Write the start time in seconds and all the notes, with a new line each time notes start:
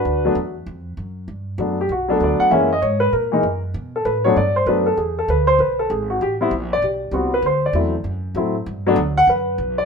Already playing: D4 F#4 B4
0.05 D2
0.25 F#3 A3 B3 D4
0.35 E2
0.66 F2
0.97 F#2
1.28 G2
1.58 F#2 F#3 A3 B3 D4
1.81 G4
1.89 B1 F#4
2.08 F#3 A3 B3 D4 A4
2.20 D2 D5
2.40 F#5, muted upright bass stroke
2.51 F#2 E3 G#3 A#3 C#4 E5
2.73 D#5
2.82 G#2 C#5
3.00 B4
3.13 A#2 A#4
3.32 E3 G#3 A#3 D#4
3.43 F#2
3.74 B2
3.96 A4
4.05 A2 B4
4.24 F#3 A3 B3 D4 C#5
4.36 G2 D5
4.56 C5
4.66 F#2 F#3 A3 B3 D4 B4
4.86 A4
4.97 E2 G#4
5.19 A4
5.28 D2 B4
5.47 C5
5.59 B1 B4
5.79 A4
5.90 G#1 G#4
6.10 F#4
6.21 A1 G4
6.41 G3 B3 C4 E4
6.51 A#1
6.73 D5
6.82 B1 G4
7.11 C2 G3 B3 C4 F#4
7.34 B4
7.42 D2 C5
7.66 D5
7.73 E2 F#3 A3 C4 E4
8.04 F#2
8.35 A2 F#3 A3 C4 E4
8.66 G2
8.86 F#3 A3 B3 D4
8.96 D2
9.18 F#5
9.27 F#2 B4
9.58 B1
9.78 D5